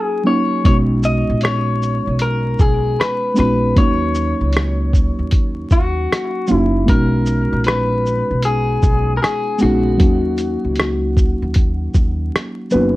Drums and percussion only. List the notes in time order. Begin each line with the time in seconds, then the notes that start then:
0.65 kick, closed hi-hat
1.03 shaker
1.41 cross-stick, closed hi-hat
1.82 shaker
2.19 closed hi-hat
2.59 kick, shaker
3.01 cross-stick, closed hi-hat
3.36 cross-stick, shaker
3.77 kick, closed hi-hat
4.15 shaker
4.53 cross-stick, closed hi-hat
4.93 kick, shaker
5.31 kick, closed hi-hat
5.71 kick, shaker
6.12 cross-stick, closed hi-hat
6.47 shaker
6.88 kick, closed hi-hat
7.26 shaker
7.64 cross-stick, closed hi-hat
8.06 shaker
8.42 closed hi-hat
8.83 kick, shaker
9.24 cross-stick, closed hi-hat
9.59 cross-stick, shaker
10.00 kick, closed hi-hat
10.38 closed hi-hat, shaker
10.76 cross-stick, closed hi-hat
11.17 kick, shaker
11.54 kick, closed hi-hat
11.94 kick, shaker
12.36 cross-stick, closed hi-hat
12.71 shaker